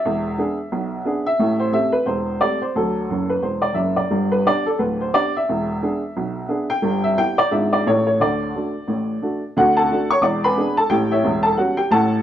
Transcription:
X:1
M:4/4
L:1/8
Q:"Swing" 1/4=177
K:Em
V:1 name="Upright piano"
e6- e e- | e c e B c2 d c | A3 B c d e d- | d B d A B c d e- |
e6- e g- | [K:D] g e g d e d c c | d6- d z | [Ff] [Afa]2 [cc'] [dd'] [B^gb]2 [Aa] |
[Gg] [Ece]2 [Aa] [Ff] [Gg] [Afa]2 |]
V:2 name="Upright piano" clef=bass
[E,,,E,,]2 [B,D^G]2 [B,,,B,,]2 [B,DG]2 | [A,,,A,,]2 [A,CG]2 [E,,,E,,]2 [A,CG]2 | [D,,F,]2 [F,,,F,,]2 [E,,,E,,]2 [F,,,F,,]2 | [G,,,G,,]2 [B,DG]2 [D,,,D,,]2 [B,DG]2 |
[E,,,E,,]2 [B,D^G]2 [B,,,B,,]2 [B,DG]2 | [K:D] [G,,,G,,]2 [B,EG]2 [^G,,,^G,,B,D^E]2 [A,,,A,,A,=E]2 | [D,,D,]2 [A,DF]2 [A,,,A,,]2 [A,DF]2 | [D,,D,]2 [A,DF]2 [E,,,E,,]2 [^G,B,D]2 |
[A,,,A,,]2 [E,,,E,,]2 [G,B,C]2 [A,,,A,,]2 |]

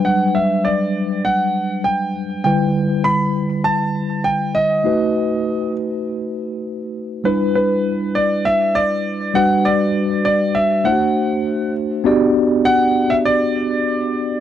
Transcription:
X:1
M:4/4
L:1/16
Q:1/4=100
K:G
V:1 name="Grand piano"
f2 e2 d4 f4 g4 | g4 b4 a4 g2 ^d2- | ^d6 z8 z2 | B2 B4 d2 e2 d4 f2 |
d4 d2 e2 f6 z2 | z4 f3 e d8 |]
V:2 name="Tine electric piano"
[F,G,DB]12- [F,G,DB]2 z2 | [D,G,EB]16 | [A,^DFB]16 | [G,DEB]12- [G,DEB]2 [G,DFB]2- |
[G,DFB]8 [A,DEFc]8 | [B,DFGd]16 |]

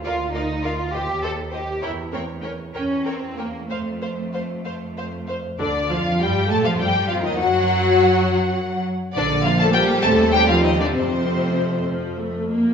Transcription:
X:1
M:6/8
L:1/16
Q:3/8=66
K:Fmix
V:1 name="Violin section"
f2 f2 f2 e2 e2 e2 | g2 g2 g2 g2 g2 g2 | f2 f2 f2 f2 f2 f2 | d2 f2 g2 a f g2 f e |
_g8- g2 z2 | d2 f a g2 a2 g f e d | c6 z6 |]
V:2 name="Violin section"
d2 d2 d2 c2 c2 c2 | ^c2 c2 c2 c2 c2 c2 | c2 c2 c2 c2 c2 c2 | D2 F2 G2 A F G2 F E |
_G8- G2 z2 | D2 F A G2 A2 G F E D | C6 z6 |]
V:3 name="Viola section"
B2 B2 B2 G2 G2 G2 | B2 B2 B2 B2 B2 B2 | c2 c2 c2 c2 c2 c2 | D,2 F,2 G,2 A, F, G,2 F, E, |
_G,8- G,2 z2 | z2 [F,B,]4 [G,C]2 [G,C]4 | z2 [F,A,]4 F,2 A,2 B,2 |]
V:4 name="Cello section" clef=bass
F2 E2 F2 G2 A2 G2 | =E2 C2 ^C2 C2 =C2 B,2 | A,8- A,2 z2 | D,2 F,2 G,2 A, F, G,2 F, E, |
_G,8- G,2 z2 | D,2 F, A, G,2 A,2 G, F, E, D, | C,6 z6 |]
V:5 name="Double bass section" clef=bass
D,,6 E,,6 | =E,,6 E,,6 | F,,6 F,,6 | D,,2 F,,2 G,,2 A,, F,, G,,2 F,, E,, |
_G,,8- G,,2 z2 | B,,,6 E,,6 | F,,6 F,,6 |]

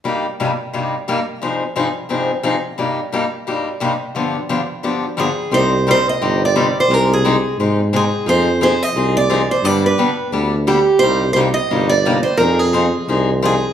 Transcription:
X:1
M:4/4
L:1/16
Q:"Swing" 1/4=175
K:Cm
V:1 name="Steel-string acoustic guitar"
z16 | z16 | z16 | z12 A4 |
c4 c2 e4 d4 c2 | B2 A6 z4 A4 | c4 c2 e4 d4 c2 | d2 =B6 z4 G4 |
c4 c2 e4 d4 c2 | B2 A6 z4 A4 |]
V:2 name="Steel-string acoustic guitar"
[G,,C,G,B,EG]2 z2 [G,,C,G,B,EG] z3 [G,,C,G,B,EG]2 z2 [G,,C,G,B,EG] z3 | [G,,C,F,CEA]2 z2 [G,,C,F,CEA] z3 [G,,C,F,CEA]2 z2 [G,,C,F,CEA] z3 | [G,,C,G,B,EG]2 z2 [G,,C,G,B,EG] z3 [G,,C,G,B,EG]2 z2 [G,,C,G,B,EG] z3 | [G,,D,F,=B,DG]2 z2 [G,,D,F,B,DG] z3 [G,,D,F,B,DG]2 z2 [G,,D,F,B,DG] z3 |
[C,G,CEGd]2 z2 [C,G,CEGd] z3 [C,G,CEGd]2 z2 [C,G,CEGd] z3 | [C,A,CEG]2 z2 [C,A,CEG] z3 [C,A,CEG]2 z2 [C,A,CEG] z3 | [F,CEA]2 z2 [F,CEA] z3 [F,CEA]2 z2 [F,CEA] z3 | [D,G,=B,DG]2 z2 [D,G,B,DG] z3 [D,G,B,DG]2 z2 [D,G,B,DG] z3 |
[C,G,B,EG]2 z2 [C,G,B,EG] z3 [C,G,B,EG]2 z2 [C,G,B,EG] z3 | [F,CEA]2 z2 [F,CEA] z3 [F,CEA]2 z2 [F,CEA] z3 |]
V:3 name="Tuba" clef=bass
z16 | z16 | z16 | z16 |
C,,8 G,,,8 | C,,8 A,,8 | F,,8 C,,8 | G,,4 z4 D,,8 |
C,,8 G,,,8 | F,,8 C,,8 |]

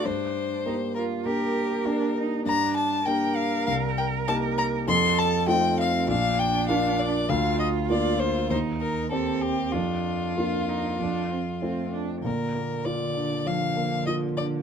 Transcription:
X:1
M:4/4
L:1/8
Q:1/4=99
K:Gm
V:1 name="Violin"
c3 B B3 z | [K:Bb] b a g f f g a b | c' a g f f g f d | f e d c c B A G |
F6- F z | B2 d2 f2 e d |]
V:2 name="Cello"
D2 E F G2 D E | [K:Bb] D2 B6 | A2 C2 D4 | F4 E2 C2 |
D2 F E D C C D | D,8 |]
V:3 name="Grand piano"
G,,2 [B,DG]2 [B,DG]2 [B,DG]2 | [K:Bb] G,,2 [B,DG]2 C,,2 [B,EG]2 | F,,2 [A,EF]2 B,,,2 [B,DF]2 | D,,2 [B,DF]2 E,,2 [B,CG]2 |
F,,2 [B,DF]2 F,,2 [A,CF]2 | B,, B, F D F, B, F D |]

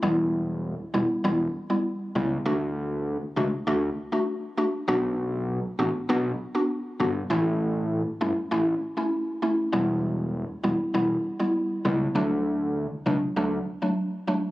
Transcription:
X:1
M:4/4
L:1/16
Q:1/4=99
K:Edor
V:1 name="Synth pluck"
[G,B,E]4 z2 [G,B,E] z [G,B,E] z2 [G,B,E] z2 [G,B,E] z | [A,DF]4 z2 [A,DF] z [A,DF] z2 [A,DF] z2 [A,DF] z | [B,DF]4 z2 [B,DF] z [B,DF] z2 [B,DF] z2 [B,DF] z | [A,CE]4 z2 [A,CE] z [A,CE] z2 [A,CE] z2 [A,CE] z |
[G,B,E]4 z2 [G,B,E] z [G,B,E] z2 [G,B,E] z2 [G,B,E] z | [F,A,D]4 z2 [F,A,D] z [F,A,D] z2 [F,A,D] z2 [F,A,D] z |]
V:2 name="Analog synth bass" clef=bass
E,,,4- E,,, z E,,, z E,,,2 z4 C,,2 | D,,4- D,, z C,, z D,,2 z6 | B,,,4- B,,, z A,,, z B,,,2 z4 G,,,2 | A,,,4- A,,, z G,,, z A,,,2 z6 |
E,,,4- E,,, z E,,, z E,,,2 z4 C,,2 | D,,4- D,, z C,, z D,,2 z6 |]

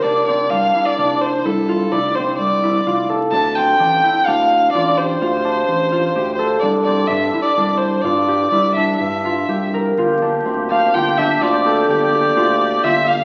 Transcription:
X:1
M:7/4
L:1/16
Q:1/4=127
K:Gdor
V:1 name="Violin"
d2 d2 f3 d3 c2 A4 d2 c2 d6 z2 | a2 g6 f4 d2 c12 c2 | d2 d2 e3 d3 c2 d4 d2 e2 e6 z2 | z6 f2 g2 e2 d4 d8 e2 f2 |]
V:2 name="Harp"
D2 C2 D2 E2 D4 E2 F2 E2 C4 E2 F2 A2 | D2 C2 D2 E2 D4 F2 G2 F2 D4 F2 G2 A2 | D2 C2 D2 E2 D4 F2 G2 E2 D4 F2 G2 B2 | F2 D2 C2 D2 F2 D2 F2 A2 G2 G2 F4 F4 |]
V:3 name="Woodwind section"
z24 z4 | z24 z4 | z24 z4 | [F,B,G]24- [F,B,G]4 |]
V:4 name="Sub bass" clef=bass
F,,,4 C,,2 z2 F,,,4 C,,4 F,,,4 C,,4 F,,,4 | D,,4 A,,,2 z2 D,,4 A,,,4 D,,4 A,,,4 D,,4 | C,,4 G,,2 z2 C,,4 G,,4 C,,4 G,,4 C,,4 | G,,,4 D,,4 G,,,4 D,,4 G,,,4 D,,4 G,,,4 |]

